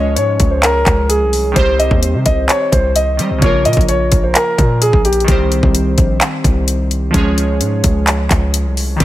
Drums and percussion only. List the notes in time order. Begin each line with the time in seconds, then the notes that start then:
0.17 closed hi-hat
0.40 kick, closed hi-hat
0.63 clap, closed hi-hat
0.86 kick, clap, closed hi-hat
1.10 closed hi-hat
1.33 open hi-hat
1.56 kick, closed hi-hat
1.80 closed hi-hat
1.91 kick
2.03 closed hi-hat
2.26 kick, closed hi-hat
2.49 clap, closed hi-hat
2.72 kick, closed hi-hat
2.96 closed hi-hat
3.19 closed hi-hat
3.42 kick, closed hi-hat
3.65 closed hi-hat
3.73 kick, closed hi-hat
3.81 closed hi-hat
3.89 closed hi-hat
4.12 kick, closed hi-hat
4.35 clap, closed hi-hat
4.58 kick, closed hi-hat
4.82 closed hi-hat
4.93 kick
5.05 closed hi-hat
5.13 closed hi-hat
5.20 closed hi-hat
5.28 kick, closed hi-hat
5.52 closed hi-hat
5.63 kick
5.75 closed hi-hat
5.98 kick, closed hi-hat
6.21 clap, closed hi-hat
6.44 kick, closed hi-hat
6.68 closed hi-hat
6.91 closed hi-hat
7.14 kick, closed hi-hat
7.38 closed hi-hat
7.61 closed hi-hat
7.84 kick, closed hi-hat
8.07 clap, closed hi-hat
8.30 kick, clap, closed hi-hat
8.54 closed hi-hat
8.77 open hi-hat
9.00 kick, closed hi-hat